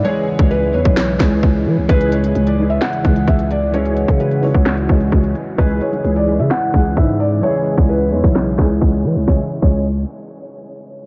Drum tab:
CC |----------------|----------------|----------------|----------------|
HH |----------------|xxxxxx--xxxxxxx-|xxxxxxo-xxxxxxx-|xxxxxx--xxxxxxx-|
CP |--------x-x-----|--------x-------|--------x-------|--------x-------|
SD |--------o-o-----|--------o-------|--------o-------|--------o-------|
BD |---o---o--o-o---|o---------o-o---|---o---o--o-o---|o---------o-o---|

CC |----------------|---x------------|
HH |xxxxxx--xxxxxxx-|----------------|
CP |--------x-x-----|----------------|
SD |--------o-o-----|o---------------|
BD |---o---o--o-o---|o--o------------|